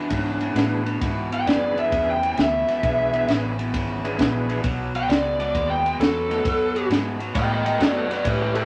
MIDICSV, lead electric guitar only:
0, 0, Header, 1, 2, 480
1, 0, Start_track
1, 0, Tempo, 452489
1, 1077, Time_signature, 4, 2, 24, 8
1, 9176, End_track
2, 0, Start_track
2, 0, Title_t, "Lead electric guitar"
2, 0, Program_c, 0, 29
2, 0, Note_on_c, 0, 62, 89
2, 1046, Note_off_c, 0, 62, 0
2, 1421, Note_on_c, 0, 79, 87
2, 1565, Note_off_c, 0, 79, 0
2, 1565, Note_on_c, 0, 74, 89
2, 1872, Note_off_c, 0, 74, 0
2, 1899, Note_on_c, 0, 76, 78
2, 2199, Note_off_c, 0, 76, 0
2, 2233, Note_on_c, 0, 79, 95
2, 2527, Note_off_c, 0, 79, 0
2, 2560, Note_on_c, 0, 76, 106
2, 3472, Note_off_c, 0, 76, 0
2, 5263, Note_on_c, 0, 79, 80
2, 5401, Note_on_c, 0, 74, 90
2, 5406, Note_off_c, 0, 79, 0
2, 5710, Note_off_c, 0, 74, 0
2, 5732, Note_on_c, 0, 74, 77
2, 6035, Note_off_c, 0, 74, 0
2, 6046, Note_on_c, 0, 79, 98
2, 6353, Note_off_c, 0, 79, 0
2, 6368, Note_on_c, 0, 69, 95
2, 7294, Note_off_c, 0, 69, 0
2, 7802, Note_on_c, 0, 75, 101
2, 7816, Note_on_c, 0, 79, 114
2, 7959, Note_off_c, 0, 75, 0
2, 7961, Note_off_c, 0, 79, 0
2, 7981, Note_on_c, 0, 75, 82
2, 7990, Note_on_c, 0, 79, 87
2, 8107, Note_off_c, 0, 75, 0
2, 8117, Note_off_c, 0, 79, 0
2, 8120, Note_on_c, 0, 75, 86
2, 8130, Note_on_c, 0, 79, 90
2, 8267, Note_off_c, 0, 75, 0
2, 8278, Note_off_c, 0, 79, 0
2, 8294, Note_on_c, 0, 71, 76
2, 8308, Note_on_c, 0, 74, 97
2, 8434, Note_off_c, 0, 71, 0
2, 8447, Note_off_c, 0, 74, 0
2, 8452, Note_on_c, 0, 71, 91
2, 8463, Note_on_c, 0, 74, 95
2, 8593, Note_off_c, 0, 71, 0
2, 8605, Note_off_c, 0, 74, 0
2, 8611, Note_on_c, 0, 71, 79
2, 8619, Note_on_c, 0, 74, 85
2, 8778, Note_off_c, 0, 71, 0
2, 8778, Note_on_c, 0, 67, 86
2, 8783, Note_off_c, 0, 74, 0
2, 8783, Note_on_c, 0, 71, 102
2, 8916, Note_off_c, 0, 67, 0
2, 8922, Note_off_c, 0, 71, 0
2, 8929, Note_on_c, 0, 67, 101
2, 8936, Note_on_c, 0, 71, 101
2, 9058, Note_off_c, 0, 67, 0
2, 9066, Note_off_c, 0, 71, 0
2, 9070, Note_on_c, 0, 67, 76
2, 9079, Note_on_c, 0, 71, 92
2, 9176, Note_off_c, 0, 67, 0
2, 9176, Note_off_c, 0, 71, 0
2, 9176, End_track
0, 0, End_of_file